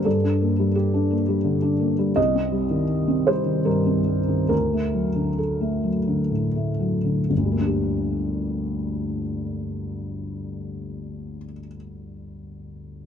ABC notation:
X:1
M:3/4
L:1/16
Q:1/4=66
K:Gm
V:1 name="Felt piano"
A4 G8 | e6 c2 B4 | B4 A4 z4 | [G,,,D,,G,B,DG]12- |
[G,,,D,,G,B,DG]12 |]
V:2 name="Felt piano" clef=bass
[G,,G,] D B, G,2 D B, G, D, D B, G, | C,, C G, E,2 C G, E, G,, C G, E, | D,, A, ^F, D,2 A, F, D, A,, A, F, D, | z12 |
z12 |]